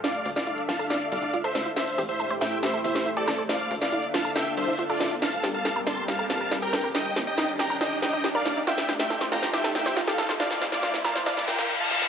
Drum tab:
HH |xxoxxxooxxoxxxox|xooxxxoxxxoxxxox|xxoxxxooxxoxxxox|xooxxxoxxxoxxxox|
TB |----------------|----------------|----------------|xxxxxxxxxxxxxxxx|
SD |o--o--o-o-----o-|o-----o-o--o--o-|o--o--o-o-----o-|o-o-o-o-o-o-o-o-|

HH |xxoxxxooxxoxxxox|xooxxxoxxxoxxxox|xxoxxxooxxox----|
TB |xxxxxxxxxxxxxxxx|xxxxxxxxxxxxxxxx|xxxxxxxxxxxx----|
SD |o-o-o-o-o-o-o-o-|oooooooooooooooo|oooooooooooo--oo|